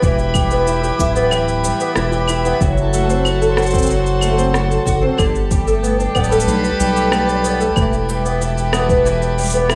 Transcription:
Already playing: E3 E4 G4 B4
0.02 E1 E3, kick, shaker
0.19 shaker
0.34 G3, kick, claves, shaker
0.51 B3, shaker
0.67 E4, shaker
0.83 G4, shaker
0.99 D1 E4, kick, shaker
1.15 B3, shaker
1.31 E3, claves, shaker
1.48 shaker
1.63 G3, shaker
1.80 B3, shaker
1.96 E1 E4, cross-stick, shaker
2.12 G4, shaker
2.28 E4, claves, shaker
2.45 B3, shaker
2.60 F#1 F#3, kick, shaker
2.78 A4, shaker
2.93 A3 F#4, shaker
3.09 C4, shaker
3.25 F#4, claves, shaker
3.41 A4, shaker
3.49 C5
3.57 F#4, cross-stick, shaker
3.62 shaker
3.66 shaker
3.70 C4, kick, shaker
3.74 shaker
3.78 shaker
3.82 shaker
3.86 F#3, shaker
3.91 shaker
4.06 shaker
4.21 A3, claves, shaker
4.37 C4, shaker
4.53 F#4, cross-stick, shaker
4.70 A4, shaker
4.86 F#1 F#4, kick, shaker
5.01 C4
5.18 G1 D3 G3, kick, claves, shaker
5.35 shaker
5.50 G3, kick, shaker
5.57 G4
5.67 A3, shaker
5.83 B3, shaker
5.99 D4, shaker
6.15 D1 B3, kick, claves, shaker
6.24 shaker
6.29 A3 B4, shaker
6.40 shaker
6.47 B1 D3, shaker
6.64 shaker
6.80 B1 G3, shaker
6.96 A3, shaker
7.12 B3, cross-stick, claves, shaker
7.28 D4, shaker
7.44 B3, shaker
7.60 A3, shaker
7.76 E1 E3, kick, claves, shaker
7.93 shaker
8.01 E4
8.08 G3, shaker
8.25 B3, shaker
8.41 E4, shaker
8.57 G4, shaker
8.73 B3, cross-stick, claves, shaker
8.89 B3, kick, shaker
9.05 E3, shaker
9.22 shaker
9.38 G3, shaker
9.41 shaker
9.43 shaker
9.45 shaker
9.48 shaker
9.50 shaker
9.52 B3, shaker
9.70 E4, cross-stick, claves, shaker

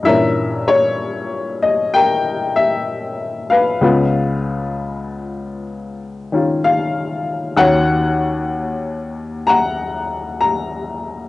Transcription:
0.03 G2 A#2 E3 E5
0.07 C#4 A#4
0.68 C#5
1.63 D#5
1.94 A#4 G5
2.56 E5
3.50 B4 F5
3.81 C#2 C#3 B3 F4
6.32 D#3 C#4 F4
6.64 F5
7.57 D#2 D#3 C#4 F#4 C#5 F#5
9.47 F#5 A#5
10.41 A#5

